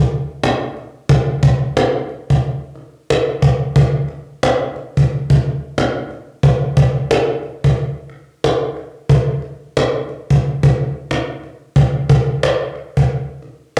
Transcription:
0.09 cajon slap
0.43 cajon slap
0.77 cajon slap
1.09 cajon bass
1.43 cajon bass
1.77 cajon slap
2.09 cajon slap
2.30 cajon bass
2.43 cajon slap
2.75 cajon slap
3.10 cajon slap
3.42 cajon bass
3.76 cajon bass
4.08 cajon slap
4.43 cajon slap
4.76 cajon slap
4.97 cajon bass
5.10 cajon slap
5.30 cajon bass
5.43 cajon slap
5.78 cajon slap
6.11 cajon slap
6.43 cajon bass
6.77 cajon bass
7.11 cajon slap
7.43 cajon slap
7.64 cajon bass
7.77 cajon slap
8.09 cajon slap
8.44 cajon slap
8.77 cajon slap
9.09 cajon bass
9.42 cajon slap
9.77 cajon slap
10.09 cajon slap
10.30 cajon bass
10.44 cajon slap
10.63 cajon bass
10.76 cajon slap
11.11 cajon slap
11.43 cajon slap
11.76 cajon bass
12.09 cajon bass
12.43 cajon slap
12.75 cajon slap
12.97 cajon bass
13.10 cajon slap
13.42 cajon slap
13.77 cajon slap

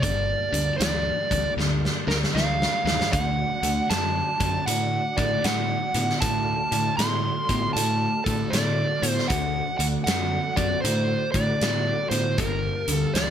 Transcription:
0.00 G1 G2 D3 A#3 G4 D5 F5 A5, kick, closed hi-hat
0.53 D2 G2 D3, closed hi-hat
0.78 D2 G2 E3 D5, snare, closed hi-hat
1.31 D2 G2 E3, kick, closed hi-hat
1.57 D2 G2 D3, snare
1.85 snare
2.07 D2 G2 D3 A#4, snare
2.24 snare
2.34 D2 G2 E3 F5, snare
2.62 snare
2.85 D#2 G2 E3, snare
3.01 snare
3.12 D2 D3 A3 D4 F#4 D5 F#5, kick, closed hi-hat
3.62 D2 D3 A3, closed hi-hat
3.90 F#2 D3 B3 A5, snare, closed hi-hat
4.40 F#2 D3 B3, kick, closed hi-hat
4.66 A2 D3 A3 F#5, closed hi-hat
5.17 A2 D3 A3 D5, kick, closed hi-hat
5.44 A2 D3 B3 F#5, snare, closed hi-hat
5.94 A2 D3 B3, closed hi-hat
6.10 snare
6.21 A2 D3 A3 F#4 A4 D5 F5 A5, kick, closed hi-hat
6.72 A2 D3 A3, closed hi-hat
6.97 A2 D3 B3 C6, snare, closed hi-hat
7.49 A2 D3 B3, kick, closed hi-hat
7.73 A2 D3 A3 A5, closed hi-hat
8.24 A2 D3 A3 A4, kick, closed hi-hat
8.50 A2 D3 B3 D5, snare, closed hi-hat
9.02 A2 D3 B3, closed hi-hat
9.09 C5
9.18 snare
9.28 D2 D3 A3 F#4 A4 D5 F#5, kick, closed hi-hat
9.78 D2 D3 A3 F#5, closed hi-hat
10.04 F#2 D3 B3 F#5, closed hi-hat
10.08 snare
10.56 F#2 D3 B3 D5, kick, closed hi-hat
10.82 A2 D3 A3 C5, closed hi-hat
11.32 A2 D3 A3 D5, kick, closed hi-hat
11.61 A2 D3 B3, snare, closed hi-hat
12.10 A2 D3 B3 C5, closed hi-hat
12.38 G1 G2 D3 A#3 G4 A#4 F5 A5, kick, closed hi-hat
12.88 D2 G2 D3, closed hi-hat
12.93 A4
13.14 D2 G2 E3 D5, snare, closed hi-hat

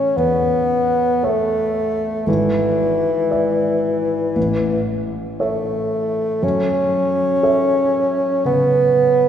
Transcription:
Already playing: A1 C#4 A4 C#5 E5
0.17 E2 B3
1.23 A3 A4 C#5 E5
2.27 G#1 E3
3.31 D5 E5
4.36 A1
5.40 A3 C#5 E5
6.43 F#2 C#4
7.43 A4 C#5 E5
8.45 C#3 B3

